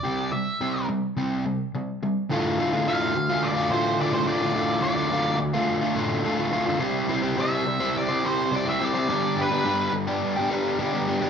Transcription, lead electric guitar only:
X:1
M:4/4
L:1/16
Q:1/4=106
K:Ddor
V:1 name="Lead electric guitar"
d2 e4 z8 z2 | z4 f4 d2 c2 d c d2- | d2 d4 z8 z2 | z4 e4 d2 c2 d e d2- |
d2 B4 z8 z2 |]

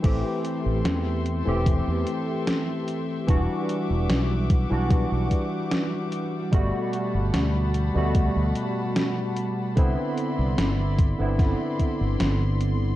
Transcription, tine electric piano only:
X:1
M:4/4
L:1/16
Q:1/4=74
K:Ador
V:1 name="Tine electric piano"
[E,A,CG]6- [E,A,CG] [E,A,CG]8- [E,A,CG] | [E,G,DF]6- [E,G,DF] [E,G,DF]8- [E,G,DF] | [B,,G,A,F]6- [B,,G,A,F] [B,,G,A,F]8- [B,,G,A,F] | [D,B,CE]6- [D,B,CE] [D,B,CE]8- [D,B,CE] |]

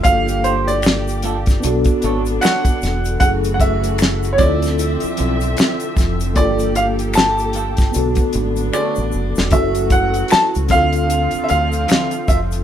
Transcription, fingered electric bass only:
X:1
M:4/4
L:1/16
Q:"Swing 16ths" 1/4=76
K:Dlyd
V:1 name="Fingered electric bass" clef=bass
=G,,,8 B,,, z ^G,,,2 z2 E,,,2 | F,,,6 D,,3 z B,,,2 z2 =F,,,2 | =G,,,8 B,,, z ^G,,,2 z A,,, F,,, E,,, | F,,,4 z C,, D,,3 z D,,2 z2 =F,,,2 |]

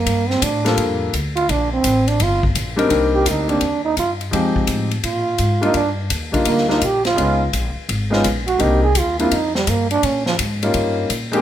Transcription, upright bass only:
X:1
M:4/4
L:1/8
Q:"Swing" 1/4=168
K:Gm
V:1 name="Upright bass" clef=bass
G,,2 A,,2 F,,2 D,,2 | B,,,2 A,,,2 G,,,2 B,,,2 | [K:Cm] C,,2 D,,2 E,,2 G,,2 | F,, z =A,,2 B,,2 _A,,2 |
G,,2 E,,2 D,,2 B,,,2 | _D,,2 B,,, z A,,,2 B,,,2 | C,,2 E,,2 F,,2 G,,2 | B,,2 A,,2 G,,2 B,,2 |]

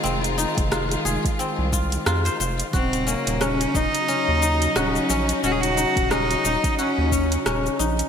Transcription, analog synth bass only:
X:1
M:4/4
L:1/16
Q:"Swing 16ths" 1/4=89
K:Ebdor
V:1 name="Analog synth bass" clef=bass
F,,,2 z F,,,2 z F,,, z2 C,,2 z F,, z F,,, z | E,,,2 z E,,,2 z E,,, z2 E,,2 z E,,, z B,,, z | E,,,2 z E,,,2 z E,,, z2 E,,2 z E,,, z B,,, z |]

